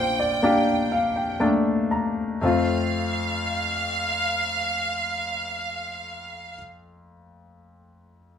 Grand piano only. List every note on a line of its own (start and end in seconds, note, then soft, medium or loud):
0.00 2.39 A#1 soft
0.00 2.38 A#2 soft
0.00 0.43 A#3 soft
0.00 0.44 D4 soft
0.00 0.39 F4 medium
0.00 0.44 G4 medium
0.00 0.18 C5 soft
0.19 0.42 D5 soft
0.43 1.35 A#3 medium
0.43 1.36 D4 medium
0.43 1.36 G4 medium
0.43 0.88 F5 soft
0.92 1.14 F5 soft
1.16 1.39 G5 soft
1.40 2.37 A3 medium
1.40 2.37 A#3 soft
1.40 2.37 D4 soft
1.40 1.87 A5 soft
1.91 2.39 A#5 soft
2.41 6.54 F2 soft
2.41 6.53 A3 soft
2.41 6.55 C4 soft
2.41 6.57 F4 soft